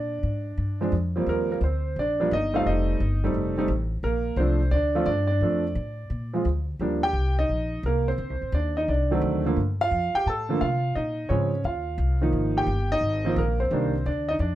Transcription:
Already playing: upright bass A#2, grand piano D4 D5
0.23 upright bass G#2
0.57 upright bass G2
0.81 grand piano F3 G#3 C4 D4
0.92 upright bass F2
1.16 grand piano F3 G3 A#3 C4
1.26 upright bass D#2, grand piano A#3 A#4
1.52 grand piano A#3 A#4
1.61 upright bass D2, grand piano C5
1.65 grand piano C4
1.96 upright bass A#1, grand piano D5
2.00 grand piano D4
2.20 grand piano F3 G3 A#3 D4
2.31 upright bass G1, grand piano D#5
2.35 grand piano D#4
2.53 grand piano G3 A3 C4 D#4 F5
2.57 grand piano F4
2.66 upright bass F1, grand piano D#4 D#5
3.00 upright bass G1
3.24 grand piano G3 A3 C4 D#4
3.34 upright bass F1
3.58 grand piano G3 A3 C4 D#4
3.68 upright bass A1
4.03 upright bass A#1, grand piano A#3 A#4
4.36 upright bass C2, grand piano F3 A3 C4 D4 C5
4.71 upright bass D2, grand piano D4 D5
4.95 grand piano F3 A3 C4 F4
5.06 upright bass G2, grand piano D4 D5
5.27 grand piano D4 D5
5.41 upright bass F2, grand piano F3 A3 C4 D4
5.75 upright bass A2
6.10 upright bass A#2
6.33 grand piano F3 G#3 C4 F4
6.45 upright bass D2
6.79 upright bass D#2, grand piano F3 G3 A#3 D4
7.03 grand piano G4 G5
7.13 upright bass C2
7.39 grand piano D#4 D#5
7.49 upright bass A#1
7.83 upright bass C2, grand piano A#3 A#4
8.08 grand piano C4 C5
8.18 upright bass D2
8.30 upright bass C2
8.41 upright bass A1
8.52 upright bass D#2, grand piano D4 D5
8.77 grand piano D#4 D#5
8.88 upright bass C2, grand piano D4 D5
9.11 grand piano D#3 F#3 A3 C4
9.22 upright bass D2
9.46 grand piano D3 F3 A3 A#3
9.56 upright bass G2
9.81 grand piano F4 F5
9.91 upright bass F2
10.14 grand piano G4 G5, muted upright bass stroke
10.26 upright bass A2, grand piano A4 A5
10.49 grand piano D3 F3 A3 A#3
10.61 upright bass C3, grand piano F4 F5
10.95 upright bass A#2, grand piano D#4 D#5
11.29 upright bass G#2, grand piano C#3 F3 G#3 C4 C#4 C#5
11.64 upright bass D#2, grand piano F4 F5
11.98 upright bass C2
12.21 grand piano D#3 F3 A#3 D#4
12.32 upright bass G#1
12.57 grand piano G4 G5
12.67 upright bass G1
12.92 grand piano D#4 D#5
13.01 upright bass G#1
13.25 grand piano D#3 F3 A#3 C4
13.36 upright bass A#1, grand piano A#3 A#4
13.60 grand piano C4 C5
13.71 upright bass C2, grand piano D#3 G3 A#3 D4
14.06 upright bass D2, grand piano D4 D5
14.29 grand piano D#4 D#5
14.39 upright bass F2, grand piano D4 D5

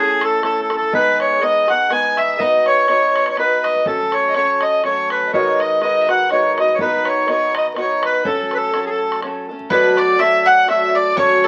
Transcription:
Already playing: steel-string acoustic guitar A3 C#4 E4 A4, accordion G#4, fiddle G#4
0.21 fiddle A4, accordion A4, bodhran
0.42 steel-string acoustic guitar A3 C#4 E4 A4, accordion A4, fiddle A4, bodhran
0.62 accordion A4
0.70 steel-string acoustic guitar C#4 E4 A4, bodhran
0.77 accordion A4, fiddle A4
0.82 bodhran
0.93 steel-string acoustic guitar G#3 B3 D#4 G#4, fiddle B4, accordion B4, bodhran
1.20 fiddle C#5, accordion C#5, bodhran
1.41 steel-string acoustic guitar G#3 B3 D#4 G#4, fiddle D#5, accordion D#5, bodhran
1.67 steel-string acoustic guitar B3 D#4 G#4, accordion F#5, fiddle F#5, bodhran
1.89 steel-string acoustic guitar G#3 B3 D#4 G#4, accordion G#5, fiddle G#5, bodhran
2.17 accordion E5, fiddle E5, bodhran
2.28 bodhran
2.39 steel-string acoustic guitar B3 D#4 F#4 B4, accordion D#5, fiddle D#5, bodhran
2.58 fiddle D#5
2.66 fiddle C#5, accordion C#5, bodhran
2.88 steel-string acoustic guitar B3 D#4 F#4 B4, bodhran
3.16 bodhran
3.26 bodhran
3.31 accordion C#5
3.36 steel-string acoustic guitar B3 D#4 F#4 B4, fiddle B4, accordion B4, bodhran
3.63 accordion D#5, bodhran
3.75 bodhran
3.85 steel-string acoustic guitar F#3 A3 C#4 A4, fiddle A4, accordion A4, bodhran
4.11 fiddle C#5, accordion C#5, bodhran
4.29 fiddle D#5
4.34 steel-string acoustic guitar F#3 A3 C#4 A4, fiddle C#5, accordion C#5, bodhran
4.61 fiddle D#5, accordion D#5, bodhran
4.83 steel-string acoustic guitar F#3 A3 C#4 A4, fiddle C#5, accordion C#5, bodhran
5.10 accordion B4, bodhran
5.22 bodhran
5.27 fiddle D#5
5.32 steel-string acoustic guitar G#2 D#3 G#3 D#4 F#4 B4, fiddle C#5, accordion C#5, bodhran
5.60 fiddle D#5, accordion D#5, bodhran
5.81 steel-string acoustic guitar G#3 D#4 F#4 B4, fiddle D#5, accordion D#5, bodhran
6.01 fiddle E5
6.08 steel-string acoustic guitar G#3 D#4 F#4 B4, fiddle F#5, accordion F#5, bodhran
6.29 steel-string acoustic guitar G#3 D#4 F#4, fiddle C#5, accordion C#5, bodhran
6.34 steel-string acoustic guitar B4
6.57 steel-string acoustic guitar G#3 D#4 F#4 B4, fiddle D#5, accordion D#5, bodhran
6.68 bodhran
6.75 accordion C#5, bodhran
6.79 steel-string acoustic guitar B3 D#4 F#4 B4, fiddle B4, accordion B4
7.05 fiddle C#5, accordion C#5, bodhran
7.27 steel-string acoustic guitar B3 D#4 F#4 B4, fiddle C#5, bodhran
7.32 accordion C#5
7.55 fiddle D#5, accordion D#5, bodhran
7.75 steel-string acoustic guitar B3 D#4 F#4 B4, fiddle C#5, bodhran
7.81 accordion C#5
8.03 fiddle B4, accordion B4, bodhran
8.24 steel-string acoustic guitar F#3 A3 C#4 A4, fiddle A4, accordion A4, bodhran
8.51 fiddle B4, accordion B4, bodhran
8.57 accordion A4, fiddle A4
8.74 steel-string acoustic guitar F#3 A3 C#4 A4, bodhran
8.86 accordion G#4
8.90 accordion A4, fiddle A4
9.12 bodhran
9.22 steel-string acoustic guitar F#3 A3 C#4 A4, bodhran
9.49 steel-string acoustic guitar A3 C#4 A4
9.60 bodhran
9.70 steel-string acoustic guitar B2 F#3 A3 D4 F#4, mandolin B4, fiddle B4, accordion B4, bodhran
9.97 accordion D5, mandolin D5, fiddle D5, bodhran
10.19 steel-string acoustic guitar F#3 A3 D4 F#4, mandolin E5, accordion E5, fiddle E5, bodhran
10.46 mandolin F#5, accordion F#5, fiddle F#5
10.67 steel-string acoustic guitar F#3 A3 D4 F#4, mandolin E5, fiddle E5, accordion E5, bodhran
10.89 fiddle C#5
10.95 mandolin D5, fiddle D5, accordion D5
11.16 steel-string acoustic guitar F#3 A3 C#4 F#4, mandolin C#5, fiddle C#5, accordion C#5, bodhran
11.44 fiddle A4, mandolin A4, accordion A4, bodhran

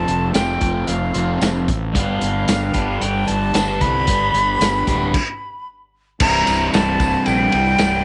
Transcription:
Already playing: overdriven electric guitar F2 C3 F3 A3 C4 F4, harmonium F3 A3 C4 A4, flute A5
0.08 fingered electric bass F1, closed hi-hat
0.33 fingered electric bass F1, overdriven electric guitar F2 C3 F3 A3 C4 F4, flute G5, snare, closed hi-hat, tambourine
0.61 fingered electric bass F1, kick, closed hi-hat
0.87 fingered electric bass F1, flute F5, closed hi-hat
1.14 fingered electric bass F1, overdriven electric guitar F2 C3 F3 A3 C4 F4, closed hi-hat
1.41 fingered electric bass F1, snare, closed hi-hat, tambourine
1.68 fingered electric bass A1, kick, closed hi-hat
1.93 fingered electric bass G1, overdriven electric guitar G2 D3 G3 B3 D4 G4, harmonium G3 B3 D4 B4, flute F5, kick, closed hi-hat
2.21 fingered electric bass G1, closed hi-hat
2.48 fingered electric bass G1, snare, closed hi-hat, tambourine
2.73 fingered electric bass G1, overdriven electric guitar G2 D3 G3 B3 D4 G4, kick, closed hi-hat
3.01 fingered electric bass G1, flute G5, closed hi-hat
3.27 fingered electric bass G1, flute A5, closed hi-hat
3.53 fingered electric bass G1, overdriven electric guitar G2 D3 G3 B3 D4 G4, snare, closed hi-hat, tambourine
3.81 fingered electric bass C2, flute B5, kick, closed hi-hat
4.07 fingered electric bass G1, overdriven electric guitar G2 D3 G3 B3 D4 G4, kick, closed hi-hat
4.34 fingered electric bass G1, closed hi-hat
4.61 fingered electric bass G1, snare, closed hi-hat, tambourine
4.87 fingered electric bass D1, overdriven electric guitar G2 D3 G3 B3 D4 G4, kick, closed hi-hat
5.14 kick, crash
6.20 fingered electric bass C1, overdriven electric guitar C2 G2 C3 G3, harmonium G3 C4 E4 C5, flute A#5, kick, crash
6.24 overdriven electric guitar E4
6.35 tambourine
6.47 fingered electric bass C1, ride, tambourine
6.61 tambourine
6.73 fingered electric bass C1, flute A5, snare, ride, tambourine
7.00 kick, ride, tambourine
7.15 tambourine
7.26 fingered electric bass A#1, flute G5, ride, tambourine
7.52 fingered electric bass C2, ride
7.67 tambourine
7.78 fingered electric bass C1, snare, ride, tambourine

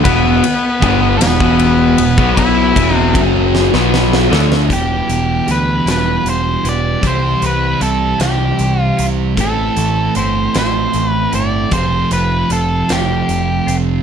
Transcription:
0.04 picked electric bass E1, distorted electric guitar E2 B2 E3, lead electric guitar B3 B4, kick, ride
0.43 muted picked electric bass stroke, muted overdriven electric guitar stroke, muted distorted electric guitar stroke, ride
0.80 picked electric bass G1, distorted electric guitar G2 D3 G3, kick, ride
1.18 picked electric bass E1, distorted electric guitar E2 B2, lead electric guitar B3 B4, ride
1.22 snare
1.40 picked electric bass E1, distorted electric guitar E2 B2 E3, kick
1.59 ride
1.98 picked electric bass E1, distorted electric guitar E2 B2, ride
2.18 picked electric bass B1, distorted electric guitar B2 F#3 B3, kick
2.37 lead electric guitar E4 E5, kick, ride
2.76 picked electric bass E1, distorted electric guitar E2 B2 E3, kick, ride
2.97 lead electric guitar D5
3.14 picked electric bass F#1, distorted electric guitar F#2 C#3 F#3, kick, ride
3.55 snare
3.72 picked electric bass B1, distorted electric guitar B2 F#3 B3, snare
3.94 snare
4.13 snare
4.31 picked electric bass D2, distorted electric guitar D3 A3 D4, snare
4.52 snare
4.68 picked electric bass E1, distorted electric guitar E2 B2, clean electric guitar E3 G3 B3 E4, kick, closed hi-hat
4.73 distorted electric guitar E3, lead electric guitar G4
5.08 picked electric bass E1, clean electric guitar G3 B3 E4, closed hi-hat
5.46 picked electric bass D2, clean electric guitar E3 G3 B3 E4, closed hi-hat
5.51 lead electric guitar B4
5.86 picked electric bass E1, clean electric guitar E3 G3 E4, snare, closed hi-hat
5.91 lead electric guitar B4
6.25 picked electric bass E1, closed hi-hat
6.30 lead electric guitar C5
6.64 picked electric bass E1, clean electric guitar G3 B3 E4, closed hi-hat
6.69 lead electric guitar D5
7.01 picked electric bass C2, distorted electric guitar C3 G3 C4, clean electric guitar C3 E3 G3 C4 E4, kick, closed hi-hat
7.07 lead electric guitar C5
7.41 picked electric bass C2, clean electric guitar G3 C4 E4, closed hi-hat
7.46 lead electric guitar B4
7.80 picked electric bass C2, clean electric guitar E3 G3 C4 E4, lead electric guitar A4, closed hi-hat
8.18 picked electric bass C2, clean electric guitar C3 E3 G3 C4 E4, lead electric guitar G4, snare, closed hi-hat
8.59 picked electric bass C2, closed hi-hat
8.81 lead electric guitar F4
8.97 picked electric bass C2, clean electric guitar G3 C4 E4, closed hi-hat
9.36 picked electric bass A1, distorted electric guitar A2 E3 A3, clean electric guitar A2 E3 A3 C4 E4, kick, closed hi-hat
9.41 lead electric guitar A4
9.76 picked electric bass A1, clean electric guitar A3 C4 E4, closed hi-hat
10.15 picked electric bass G1, clean electric guitar E3 A3 C4 E4, lead electric guitar C5, closed hi-hat
10.54 picked electric bass A1, clean electric guitar A2 E3 A3 C4 E4, snare, closed hi-hat
10.59 lead electric guitar C5
10.94 picked electric bass A1, closed hi-hat
11.09 lead electric guitar B4
11.32 picked electric bass G1, clean electric guitar A3 C4 E4, lead electric guitar D5, closed hi-hat
11.71 picked electric bass F1, distorted electric guitar F2 C3 F3, clean electric guitar F3 A3 C4, lead electric guitar C5, kick, closed hi-hat
11.75 clean electric guitar F4
12.10 picked electric bass F1, clean electric guitar A3 C4 F4, lead electric guitar B4, closed hi-hat
12.50 picked electric bass F1, clean electric guitar F3 A3 C4 F4, lead electric guitar A4, closed hi-hat
12.89 picked electric bass F1, clean electric guitar F3 A3 C4 F4, lead electric guitar G4, snare, closed hi-hat
13.29 picked electric bass F1, closed hi-hat
13.67 picked electric bass F1, clean electric guitar A3 C4 F4, closed hi-hat

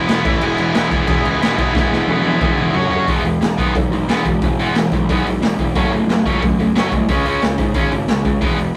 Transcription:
0.08 picked electric bass E1, distorted electric guitar E3 G#3 B3 E4, snare, crash
0.24 picked electric bass A1, distorted electric guitar A2 E3 A3 E4, kick, crash
0.41 picked electric bass E1, distorted electric guitar E3 G#3 B3 E4, crash
0.58 picked electric bass E1, crash
0.73 picked electric bass E1, distorted electric guitar E3 G#3 B3 E4, snare, crash
0.90 distorted electric guitar E3 G#3 B3 E4, kick, crash
1.06 picked electric bass E1, distorted electric guitar E3 G#3 B3 E4, kick, crash
1.24 picked electric bass C#2, crash
1.40 picked electric bass E1, distorted electric guitar E3 G#3 B3 E4, snare, crash
1.57 picked electric bass E1, distorted electric guitar E3 G#3 B3 E4, kick, crash
1.74 picked electric bass E1, distorted electric guitar E3 G#3 B3 E4, kick, snare
1.90 picked electric bass E1, snare
2.08 picked electric bass E1, distorted electric guitar E3 G#3 B3 E4, high tom
2.23 picked electric bass E1, distorted electric guitar E3 G#3 B3 E4, high tom
2.40 picked electric bass E1, distorted electric guitar E3 G#3 B3 E4, kick, mid tom
2.57 picked electric bass E1, mid tom
2.73 picked electric bass F#1, distorted electric guitar F#3 C#4 F#4 C#5, floor tom
2.90 picked electric bass F#1, distorted electric guitar F#3 C#4 F#4 C#5, floor tom
3.07 picked electric bass E1, distorted electric guitar E3 G#3 B3, kick, open hi-hat
3.24 distorted electric guitar E3 G#3, open hi-hat
3.41 picked electric bass E1, distorted electric guitar E3 G#3, snare, open hi-hat
3.58 picked electric bass B1, distorted electric guitar E3 G#3 B3, kick, open hi-hat
3.75 picked electric bass B1, distorted electric guitar E3 G#3, kick, open hi-hat
3.91 picked electric bass B1, distorted electric guitar E3 G#3, open hi-hat
4.08 picked electric bass E1, distorted electric guitar E3 G#3 B3, snare, open hi-hat
4.25 picked electric bass E1, distorted electric guitar E3 G#3, kick, open hi-hat
4.42 picked electric bass E1, distorted electric guitar E3 G#3, kick, open hi-hat
4.59 distorted electric guitar E3 G#3 B3, open hi-hat
4.74 picked electric bass E1, distorted electric guitar E3 G#3, snare, open hi-hat
4.92 picked electric bass B1, distorted electric guitar E3 G#3, kick, open hi-hat
5.09 picked electric bass B1, distorted electric guitar E3 G#3 B3, kick, open hi-hat
5.26 picked electric bass B1, distorted electric guitar E3 G#3, open hi-hat
5.41 picked electric bass E1, distorted electric guitar E3 G#3, snare, open hi-hat
5.58 picked electric bass E1, distorted electric guitar E3 G#3, kick, open hi-hat
5.75 picked electric bass F#1, distorted electric guitar F#3 A3 C#4, kick, open hi-hat
5.92 distorted electric guitar F#3 A3, open hi-hat
6.08 picked electric bass F#1, distorted electric guitar F#3 A3, snare, open hi-hat
6.25 picked electric bass C#2, distorted electric guitar F#3 A3 C#4, kick, open hi-hat
6.42 picked electric bass C#2, distorted electric guitar F#3 A3, kick, open hi-hat
6.59 picked electric bass C#2, distorted electric guitar F#3 A3, open hi-hat
6.75 picked electric bass F#1, distorted electric guitar F#3 A3 C#4, snare, open hi-hat
6.92 picked electric bass C2, distorted electric guitar F#3 A3, kick, open hi-hat
7.08 picked electric bass C#2, distorted electric guitar C#3 G#3 C#4, kick, open hi-hat
7.25 distorted electric guitar C#3 G#3 C#4, open hi-hat
7.41 picked electric bass C#2, distorted electric guitar C#3 G#3, snare, open hi-hat
7.58 picked electric bass G#2, distorted electric guitar C#3 G#3, kick, open hi-hat
7.74 picked electric bass G#1, distorted electric guitar C#3 G#3 C#4, kick, open hi-hat
7.91 picked electric bass G#1, distorted electric guitar C#3 G#3, open hi-hat
8.08 picked electric bass C#2, distorted electric guitar C#3 G#3, snare, open hi-hat
8.25 picked electric bass C#2, distorted electric guitar C#3 G#3, kick, open hi-hat
8.41 picked electric bass E1, distorted electric guitar E3 G#3 B3, kick, open hi-hat
8.58 distorted electric guitar E3 G#3, open hi-hat

